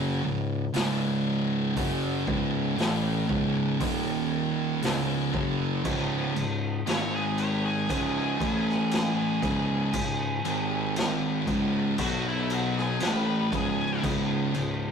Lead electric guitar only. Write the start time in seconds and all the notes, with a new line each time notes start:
6.89 C#5
7.15 G#4
7.39 C#5
7.65 G#4
7.91 G#4
12.01 F#4
12.29 E4
12.54 F#4
12.79 G#4
13.06 B4
13.56 G#4